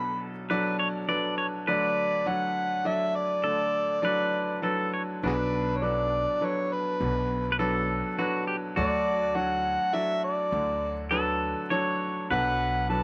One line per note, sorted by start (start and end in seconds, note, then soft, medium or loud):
0.00 1.69 B1 medium
0.00 1.69 B2 medium
0.00 0.50 F#3 medium
0.00 0.50 D4 medium
0.00 0.46 A4 medium
0.00 0.50 A4 medium
0.00 1.09 B4 medium
0.00 0.23 B5 medium
0.50 0.99 F#3 medium
0.50 0.99 D4 medium
0.50 0.99 A4 medium
0.50 0.79 B4 medium
0.50 0.99 D5 medium
0.79 0.87 C#5 medium
1.08 1.66 F#3 medium
1.08 1.66 D4 medium
1.08 1.66 A4 medium
1.08 1.67 B4 medium
1.08 1.37 D5 medium
1.38 1.46 C#5 medium
1.67 3.40 D2 medium
1.67 3.40 D3 medium
1.67 2.16 F#3 medium
1.67 2.17 D4 medium
1.67 2.16 A4 medium
1.67 3.40 B4 medium
1.67 2.17 D5 medium
1.67 2.29 D5 medium
2.26 2.75 F#3 medium
2.26 2.75 D4 soft
2.26 2.75 A4 medium
2.26 2.75 C#5 medium
2.26 2.88 F#5 medium
2.85 3.83 F#3 soft
2.85 3.83 D4 soft
2.85 3.83 A4 soft
2.85 3.84 D5 medium
2.85 3.17 E5 medium
3.16 4.64 D5 medium
3.44 5.19 D2 medium
3.44 5.19 D3 medium
3.44 3.99 A4 medium
4.02 4.53 F#3 medium
4.02 4.53 D4 medium
4.02 4.53 A4 medium
4.02 4.63 B4 medium
4.02 4.53 D5 medium
4.62 5.22 F#3 medium
4.62 5.22 D4 medium
4.62 5.22 A4 medium
4.62 4.91 A4 medium
4.62 5.22 B4 medium
4.94 5.02 C#5 medium
5.23 6.97 B1 medium
5.23 6.24 B1 medium
5.23 6.97 B2 medium
5.23 5.73 F#3 medium
5.23 5.73 D4 medium
5.23 7.60 D4 medium
5.23 5.33 F#4 soft
5.23 5.34 G#4 soft
5.23 5.73 A4 medium
5.23 5.73 B4 medium
5.23 5.79 B4 medium
5.77 5.85 C#5 medium
5.82 6.32 F#3 medium
5.82 6.32 D4 soft
5.82 6.32 A4 medium
5.82 6.32 B4 medium
5.82 6.46 D5 medium
6.41 7.40 F#3 medium
6.41 7.40 D4 soft
6.41 7.40 A4 soft
6.41 7.40 B4 medium
6.41 6.74 C#5 medium
6.73 7.61 B4 medium
7.00 8.73 B1 medium
7.00 8.00 B1 medium
7.00 8.73 B2 medium
7.52 7.59 B4 medium
7.59 8.08 F#3 medium
7.59 8.08 D4 medium
7.59 8.20 A4 medium
7.59 8.09 A4 medium
7.59 8.09 B4 medium
8.18 8.75 F#3 medium
8.18 8.75 D4 medium
8.18 8.47 F#4 medium
8.18 8.76 A4 medium
8.18 8.77 B4 medium
8.47 8.55 G4 medium
8.76 10.48 D2 medium
8.76 9.76 D2 medium
8.76 10.48 D3 medium
8.76 9.25 F#3 medium
8.76 9.25 D4 medium
8.76 11.18 F#4 medium
8.76 9.26 A4 medium
8.76 9.26 D5 medium
8.80 9.38 D5 medium
9.35 9.84 F#3 medium
9.35 9.84 D4 medium
9.35 9.84 A4 soft
9.35 9.84 C#5 medium
9.35 9.96 F#5 medium
9.93 10.91 F#3 medium
9.93 10.91 D4 soft
9.93 10.91 A4 soft
9.93 10.92 D5 medium
9.93 10.23 E5 medium
10.25 11.08 D5 medium
10.52 12.26 D2 medium
10.52 11.52 D2 medium
10.52 12.26 D3 medium
11.11 11.61 F#3 medium
11.11 11.61 D4 medium
11.11 11.72 A4 medium
11.11 11.61 A4 medium
11.11 11.61 B4 medium
11.70 12.30 F#3 medium
11.70 12.30 D4 medium
11.70 12.30 A4 medium
11.70 12.30 C#5 medium
11.70 12.31 C#5 medium
12.31 13.03 B1 medium
12.31 13.03 B2 soft
12.31 12.80 F#3 medium
12.31 12.80 D4 medium
12.31 12.80 A4 medium
12.31 13.03 B4 medium
12.31 12.80 B4 medium
12.31 12.87 F#5 medium
12.90 13.03 F#3 medium
12.90 13.03 D4 soft
12.90 13.03 A4 medium
12.90 13.03 B4 medium
12.90 13.03 A5 medium